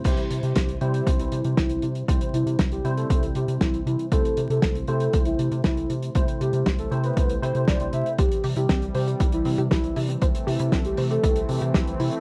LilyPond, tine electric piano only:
\new Staff \with { instrumentName = "Tine electric piano" } { \time 4/4 \key c \major \tempo 4 = 118 <c g c' e' c''>4. <c g c' e' c''>2~ <c g c' e' c''>8 | <c g c' e' c''>4. <c g c' e' c''>2~ <c g c' e' c''>8 | <c a c' e' c''>4. <c a c' e' c''>2~ <c a c' e' c''>8 | <c a c' e' c''>4. <c a c' e' c''>4 <c a c' e' c''>8. <c a c' e' c''>8. |
r1 | r1 | }